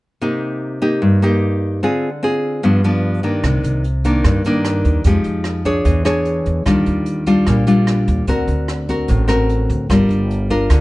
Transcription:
0.21 1.00 C3 medium
0.21 0.78 A#3 soft
0.21 0.79 D#4 soft
0.21 0.79 G4 soft
0.82 1.19 A#3 medium
0.82 1.18 D#4 medium
0.82 1.19 G4 medium
1.02 1.80 G2 medium
1.22 1.79 A#3 medium
1.22 1.80 D#4 medium
1.22 1.80 G4 medium
1.83 2.61 D3 medium
1.83 2.08 C4 medium
1.83 2.09 F4 medium
1.83 2.09 G#4 medium
2.23 2.61 C4 soft
2.23 2.61 F4 soft
2.23 2.62 G#4 medium
2.63 3.42 G2 medium
2.63 2.80 F3 medium
2.63 2.80 B3 medium
2.63 2.81 D4 medium
2.84 3.21 F3 medium
2.84 3.21 B3 medium
2.84 3.21 D4 medium
3.23 3.82 D#3 medium
3.23 3.82 A#3 soft
3.23 3.83 D4 medium
3.44 3.62 C2 medium
3.44 4.23 C3 soft
3.44 kick medium
3.44 cross-stick medium
3.44 closed hi-hat soft
3.63 4.20 C2 medium
3.63 closed hi-hat soft
3.84 closed hi-hat soft
4.04 4.42 D#3 medium
4.04 4.42 A#3 medium
4.04 4.42 D4 medium
4.04 kick soft
4.04 closed hi-hat soft
4.24 4.81 G2 medium
4.24 5.04 G2 soft
4.24 kick medium
4.24 cross-stick medium
4.24 closed hi-hat medium
4.44 5.02 D#3 medium
4.44 5.03 A#3 medium
4.44 5.03 D4 medium
4.44 closed hi-hat soft
4.65 cross-stick medium
4.65 closed hi-hat soft
4.85 5.04 D#2 medium
4.85 kick soft
4.85 closed hi-hat soft
5.04 5.24 F2 medium
5.04 5.84 F3 soft
5.04 5.63 G#3 medium
5.04 5.63 D#4 soft
5.04 5.63 G4 medium
5.04 kick medium
5.04 closed hi-hat medium
5.24 5.82 F2 medium
5.24 closed hi-hat soft
5.44 cross-stick medium
5.44 closed hi-hat soft
5.65 6.02 D4 medium
5.65 6.03 G#4 medium
5.65 6.03 C#5 medium
5.65 kick soft
5.65 closed hi-hat soft
5.85 6.42 E2 medium
5.85 6.64 E3 medium
5.85 kick medium
5.85 closed hi-hat medium
6.05 6.63 D4 medium
6.05 6.63 G#4 medium
6.05 6.63 C#5 medium
6.05 cross-stick medium
6.05 closed hi-hat soft
6.25 closed hi-hat soft
6.46 6.65 E2 medium
6.46 kick soft
6.46 closed hi-hat soft
6.66 6.85 D#2 medium
6.66 7.45 D#3 medium
6.66 7.23 G3 soft
6.66 7.24 D4 medium
6.66 7.24 F4 medium
6.66 kick medium
6.66 cross-stick medium
6.66 closed hi-hat medium
6.86 7.43 D#2 medium
6.86 closed hi-hat soft
7.06 closed hi-hat soft
7.26 7.64 G3 medium
7.26 7.64 D4 medium
7.26 7.64 F4 medium
7.26 kick soft
7.26 closed hi-hat soft
7.47 8.04 A#1 medium
7.47 8.26 A#2 medium
7.47 kick medium
7.47 cross-stick medium
7.47 closed hi-hat medium
7.67 8.24 G3 medium
7.67 8.25 D4 medium
7.67 8.25 F4 medium
7.67 closed hi-hat soft
7.87 cross-stick medium
7.87 closed hi-hat soft
8.08 8.26 D#2 medium
8.08 kick soft
8.08 closed hi-hat soft
8.27 8.47 D2 medium
8.27 9.07 D3 soft
8.27 8.85 C4 medium
8.27 8.86 F#4 medium
8.27 8.86 A#4 medium
8.27 kick medium
8.27 closed hi-hat medium
8.48 9.04 D2 medium
8.48 closed hi-hat soft
8.68 cross-stick medium
8.68 closed hi-hat soft
8.88 9.26 C4 medium
8.88 9.26 F#4 medium
8.88 9.26 A#4 medium
8.88 kick soft
8.88 closed hi-hat soft
9.08 9.65 A1 loud
9.08 9.87 A2 soft
9.08 kick medium
9.08 closed hi-hat medium
9.28 9.86 C4 medium
9.28 9.86 F#4 medium
9.28 9.86 A#4 medium
9.28 cross-stick medium
9.28 closed hi-hat soft
9.49 closed hi-hat soft
9.69 9.88 D2 medium
9.69 kick soft
9.69 closed hi-hat soft
9.90 10.08 G1 medium
9.90 10.68 G3 medium
9.90 10.47 D4 soft
9.90 10.47 F4 soft
9.90 10.47 A#4 medium
9.90 kick medium
9.90 cross-stick medium
9.90 closed hi-hat medium
10.09 10.66 G1 medium
10.09 closed hi-hat soft
10.31 closed hi-hat soft
10.50 10.81 D4 medium
10.50 10.81 F4 medium
10.50 10.81 A#4 medium
10.50 kick soft
10.50 closed hi-hat soft
10.70 10.81 D2 medium
10.70 10.81 D3 medium
10.70 kick medium
10.70 cross-stick medium
10.70 closed hi-hat medium

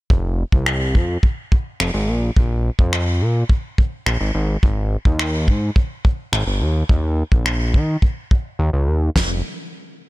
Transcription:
0.10 0.44 F1 loud
0.10 kick loud
0.52 0.97 C2 medium
0.52 kick loud
0.66 finger snap loud
0.95 1.18 F2 medium
0.95 kick medium
1.23 kick loud
1.52 kick loud
1.80 1.91 F1 medium
1.80 finger snap loud
1.94 2.10 G#1 medium
2.08 2.31 A#1 loud
2.36 2.70 A#1 loud
2.36 kick loud
2.79 3.23 F2 medium
2.79 kick loud
2.93 finger snap loud
3.21 3.44 A#2 medium
3.49 kick loud
3.78 kick loud
4.06 4.18 A#1 medium
4.06 finger snap loud
4.20 4.32 G#1 medium
4.35 4.57 G#1 loud
4.63 4.97 G#1 loud
4.63 kick loud
5.05 5.49 D#2 medium
5.05 kick medium
5.19 finger snap loud
5.48 5.70 G#2 medium
5.48 kick medium
5.76 kick loud
6.05 kick loud
6.33 6.44 G#1 medium
6.33 finger snap loud
6.47 6.62 G1 medium
6.61 6.84 D#2 loud
6.89 7.23 D#2 loud
6.89 kick loud
7.32 7.76 A#1 medium
7.32 kick medium
7.46 finger snap loud
7.74 7.97 D#3 medium
7.74 kick medium
8.02 kick loud
8.31 kick loud
8.59 8.70 D#2 loud
8.73 8.89 C#2 medium
8.87 9.10 D#2 loud
9.16 9.42 F1 medium
9.16 kick loud
9.16 snare loud
9.16 splash medium

